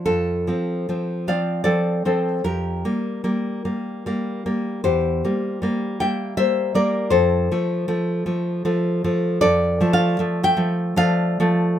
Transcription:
\new Staff \with { instrumentName = "Nylon-string guitar" } { \time 3/4 \key f \major \tempo 4 = 77 << { <f' a'>4. <d'' f''>8 <a' d''>8 <a' c''>8 | <g' bes'>2~ <g' bes'>8 r8 | <g' c''>4. <e'' g''>8 <c'' e''>8 <bes' d''>8 | <a' c''>2~ <a' c''>8 r8 |
\key d \minor \tuplet 3/2 { <a' d''>4 <d'' f''>8~ <d'' f''>8 <e'' g''>4 } <d'' f''>4 | } \\ { f,8 <f c'>8 <f c'>8 <f c'>8 <f c'>8 <f c'>8 | f,8 <g bes>8 <g bes>8 <g bes>8 <g bes>8 <g bes>8 | e,8 <g bes>8 <g bes>8 <g bes>8 <g bes>8 <g bes>8 | f,8 <f a>8 <f a>8 <f a>8 <f a>8 <f a>8 |
f,8 <f a>8 <f a>8 <f a>8 <f a>8 <f a>8 | } >> }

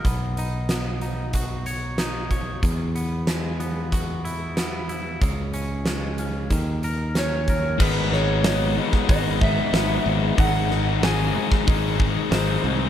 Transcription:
<<
  \new Staff \with { instrumentName = "Electric slide guitar" } { \time 4/4 \key gis \minor \tempo 4 = 93 r1 | r1 | r2. cis''4 | b'8 cis''4 r8 dis''8 e''4. |
fis''4 gis''2 bis'4 | }
  \new Staff \with { instrumentName = "Clean electric guitar" } { \time 4/4 \key gis \minor b8 dis'8 b8 dis'8 fis'8 cis''8 dis'8 cis''8 | e,8 b8 gis8 b8 fis'8 e'8 b8 e'8 | cis8 cis'8 gis8 cis'8 dis8 ais'8 cis'8 ais'8 | r1 |
r1 | }
  \new Staff \with { instrumentName = "Distorted electric guitar" } { \clef bass \time 4/4 \key gis \minor r1 | r1 | r1 | <gis, dis gis b dis'>8 <gis, dis gis b dis'>8 <gis, dis gis b dis'>8 <gis, dis gis b dis'>8 <gis, dis gis b dis'>8 <gis, dis gis b dis'>8 <gis, dis gis b dis'>8 <gis, dis gis b dis'>8 |
<gis, dis gis bis dis'>8 <gis, dis gis bis dis'>8 <gis, dis gis bis dis'>8 <gis, dis gis bis dis'>8 <gis, dis gis bis dis'>8 <gis, dis gis bis dis'>8 <gis, dis gis bis dis'>8 <gis, dis gis bis dis'>8 | }
  \new Staff \with { instrumentName = "Fingered electric bass" } { \clef bass \time 4/4 \key gis \minor b,,1 | e,1 | cis,2 dis,2 | gis,,2 gis,,4 gis,,8 gis,,8 |
gis,,2 gis,,4 gis,,8 bis,,8 | }
  \new DrumStaff \with { instrumentName = "Drums" } \drummode { \time 4/4 <hh bd>8 hh8 <hh sn>8 hh8 <hh bd>8 hh8 <hh sn>8 <hh bd>8 | <hh bd>8 hh8 <hh sn>8 hh8 <hh bd>8 hh8 <hh sn>8 hh8 | <hh bd>8 hh8 <hh sn>8 hh8 <hh bd>8 hh8 <hh sn>8 <hh bd>8 | <cymc bd>8 sn8 <hho sn>8. <bd sn>16 <hho bd>8 bd8 <hho sn>4 |
<hho bd>8 sn8 <hho sn>8. <bd sn>16 <hho bd>8 bd8 <hho sn>4 | }
>>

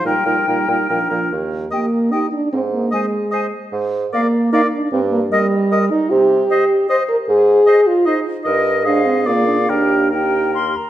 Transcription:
<<
  \new Staff \with { instrumentName = "Flute" } { \time 3/4 \key ees \major \tempo 4 = 150 g''2~ g''8 r8 | r4 g''4 g''4 | r4 aes''4 aes''4 | r4 f''4 f''4 |
r4 ees''4 ees''4 | r4 ees''4 ees''4 | r4 ees''4 ees''4 | ees''4 f''4 f''4 |
g''4 g''4 c'''8 bes''8 | }
  \new Staff \with { instrumentName = "Oboe" } { \time 3/4 \key ees \major bes'8 bes'8 bes'8 bes'8 bes'8 bes'8 | r4 ees''4 ees''4 | r4 ees''4 ees''4 | r4 d''4 d''4 |
r4 ees''4 ees''4 | r4 ees''4 ees''4 | r4 ees''4 ees''4 | ees''4 ees''4 d''4 |
bes'4 bes'4. r8 | }
  \new Staff \with { instrumentName = "Clarinet" } { \time 3/4 \key ees \major ees'8 ees'8 ees'8 ees'8 d'8 d'8 | r4 g'4 g'4 | r4 c''4 c''4 | r4 bes'4 bes'4 |
r4 bes'4 bes'4 | r4 c''4 c''4 | r4 c''4 c''4 | bes'4 aes'4 aes'4 |
g'4 g'4. r8 | }
  \new Staff \with { instrumentName = "French horn" } { \time 3/4 \key ees \major g8 g8 g8 g8 f8 f8 | r4 bes4 ees'8 d'8 | c'8 bes8 aes4. r8 | r4 bes4 ees'8 d'8 |
c'8 bes8 g4. ees'8 | g'2 c''8 bes'8 | aes'4. f'8 ees'8 r8 | r4 d'8 c'8 bes8 d'8 |
d'4 ees'4 r4 | }
  \new Staff \with { instrumentName = "Bassoon" } { \clef bass \time 3/4 \key ees \major bes,8 bes,8 bes,8 bes,8 bes,8 bes,8 | ees,4 r2 | aes,4 r2 | aes,4 r2 |
g,4 r2 | c4 r2 | aes,4 r2 | g,4 aes,4 bes,4 |
ees,2~ ees,8 r8 | }
>>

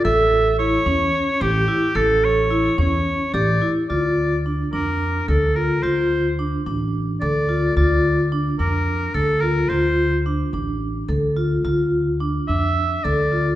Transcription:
<<
  \new Staff \with { instrumentName = "Oboe" } { \time 7/8 \key d \minor \tempo 4 = 108 e''4 cis''4. g'4 | a'8 cis''4 cis''4 d''4 | d''4 r8 bes'4 a'8 bes'8 | c''4 r4. d''4 |
d''4 r8 bes'4 a'8 bes'8 | c''4 r2 r8 | r4. e''4 d''4 | }
  \new Staff \with { instrumentName = "Vibraphone" } { \time 7/8 \key d \minor a'4 e'8 cis'4 g'8 e'8 | a'4 e'8 cis'4 g'8 e'8 | f'4 d'8 d'4 a'8 f'8 | f'4 d'8 d'4 a'8 f'8 |
f'4 d'8 d'4 a'8 f'8 | f'4 d'8 d'4 a'8 f'8 | f'4 d'8 d'4 a'8 f'8 | }
  \new Staff \with { instrumentName = "Upright bass" } { \clef bass \time 7/8 \key d \minor a,,4. e,8 r8 a,,8 r8 | a,,4. e,8 r8 a,,8 r8 | d,4. f,4 d,4 | d,4. a,,4 d,4 |
d,4. f,4 d,4 | d,4. a,,4 d,4 | d,4. f,4 d,4 | }
>>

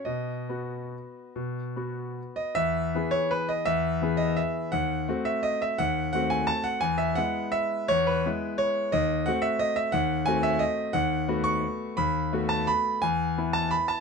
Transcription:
<<
  \new Staff \with { instrumentName = "Grand piano" } { \time 3/4 \key e \major \tempo 4 = 171 dis''2.~ | dis''2 r8 dis''8 | e''4. cis''8 b'8 dis''8 | e''4. dis''8 e''4 |
fis''4. e''8 dis''8 e''8 | fis''4 fis''8 gis''8 a''8 fis''8 | gis''8 e''8 fis''4 e''4 | cis''8 b'4. cis''4 |
dis''4 fis''8 e''8 dis''8 e''8 | fis''4 gis''8 e''8 dis''4 | fis''4. cis'''4. | b''4. a''8 b''4 |
gis''4. a''8 b''8 a''8 | }
  \new Staff \with { instrumentName = "Grand piano" } { \time 3/4 \key e \major b,4 <b fis'>2 | b,4 <b fis'>2 | e,4 <e b gis'>2 | e,4 <e b gis'>2 |
dis,4 <a bis fis'>2 | dis,4 <a bis fis'>2 | e,4 <gis b e'>2 | e,4 <gis b e'>2 |
dis,4 <a bis fis'>2 | dis,4 <a bis fis'>2 | dis,4 <a b fis'>2 | dis,4 <a b fis'>2 |
e,4 <b e'>2 | }
>>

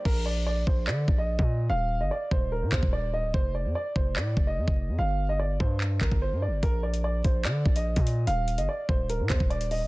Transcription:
<<
  \new Staff \with { instrumentName = "Upright piano" } { \time 4/4 \key bes \major \tempo 4 = 146 bes'8 d''8 d''8 c''8 d''8. ees''4~ ees''16 | f''8. ees''16 d''8 c''8 bes'8 c''8 d''8 ees''8 | c''8 d''8 d''8 c''8 d''8. ees''4~ ees''16 | f''8. ees''16 d''8 c''8 r8 bes'8 c''8 d''8 |
bes'8 d''8 d''8 c''8 d''8. ees''4~ ees''16 | f''8. ees''16 d''8 c''8 bes'8 c''8 d''8 ees''8 | }
  \new Staff \with { instrumentName = "808-style bass" } { \clef bass \time 4/4 \key bes \major bes,,4. bes,,8 d8 bes,,8. bes,8. | ees,,8. g,,16 r8 ees,,8. bes,16 ees,16 ees,,4 d,,16 | f,,8. f,16 r8 f,,8 a,8 f,,8 f,16 f,,8 f,16 | g,,4. g,4 g,,16 g,,8 g,16. g,,16. |
bes,,4. bes,,8 d8 bes,,8. bes,8. | ees,,8. g,,16 r8 ees,,8. bes,16 ees,16 ees,,4 d,,16 | }
  \new DrumStaff \with { instrumentName = "Drums" } \drummode { \time 4/4 <cymc bd>4 r8 bd8 hc8 bd8 r16 bd8. | r4 r8 bd8 r8 <hc bd>16 bd16 r4 | bd4 r8 bd8 hc8 bd8 r16 bd8. | r4 r8 bd8 hc8 <hc bd>16 bd16 r4 |
<hh bd>8. hh16 r8 <hh bd>8 <hc hh>8 bd16 hh16 r16 <hh bd>16 hh8 | hh8 hh16 hh16 r8 bd8 hh8 <hc hh bd>16 bd16 hh16 hh16 hho8 | }
>>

